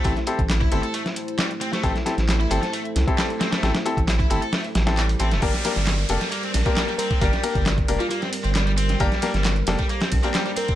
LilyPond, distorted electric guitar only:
\new Staff \with { instrumentName = "Distorted electric guitar" } { \time 4/4 \key g \dorian \tempo 4 = 134 a16 r4 e'16 e'16 a'16 a16 r8. g16 r16 c'16 a16 | a16 r4 e'16 e'16 a'16 a16 r8. g16 r16 c'16 a16 | a16 r4 e'16 e'16 a'16 a16 r8. g16 r16 c'16 a16 | g4 r8. g16 bes16 c'16 r16 c'16 g16 g16 c'8 |
g4 r8. g16 bes16 c'16 r16 c'16 g16 g16 c'8 | g4 r8. g16 bes16 c'16 r16 c'16 g16 g16 c'8 | }